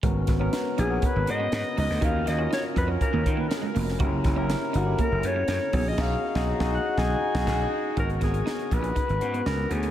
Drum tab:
CC |----------------|----------------|----------------|x-----------x---|
HH |x-x-x-x-x-x-x-o-|x-x-x-x-x-x-x-o-|x-x-x-x-x-x-x-o-|----------------|
SD |--o-o-------o--o|--o-o-------o--o|--o-o-------o---|o--o-o--o--oo---|
BD |o-o-----o-------|o-----o-o-o-----|o-o-----o-----o-|o--o-o--o--oo---|

CC |----------------|
HH |xxxx-xxxxxxx--xx|
SD |--o-o-------o---|
BD |o-o---o-o-------|